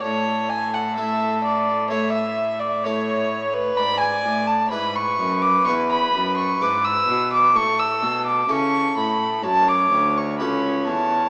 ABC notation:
X:1
M:4/4
L:1/16
Q:1/4=64
K:A
V:1 name="Violin"
c2 g f e2 d2 c e2 d c3 B | b g2 a b c'2 d' c' b2 c' d' e'2 d' | c' e'2 d' c'2 b2 a d'2 c' b2 a2 |]
V:2 name="Violin"
A8 e4 c4 | d4 B12 | A4 A4 c4 c4 |]
V:3 name="Harpsichord"
z4 [A,EA]4 [A,EA]4 [A,EA]4 | z4 [DEB]4 [DEB]4 [DEB]4 | z4 [CEA]4 z4 [CFA]4 |]
V:4 name="Harpsichord" clef=bass
A,,16 | G,,2 A,,2 G,,2 F,,2 E,,2 F,,2 G,,2 B,,2 | A,,2 B,,2 C,2 A,,2 F,,2 D,,2 C,,2 E,,2 |]
V:5 name="Cello" clef=bass
A,,16 | G,,2 A,,2 G,,2 F,,2 E,,2 F,,2 G,,2 B,,2 | A,,2 B,,2 C,2 A,,2 F,,2 D,,2 C,,2 E,,2 |]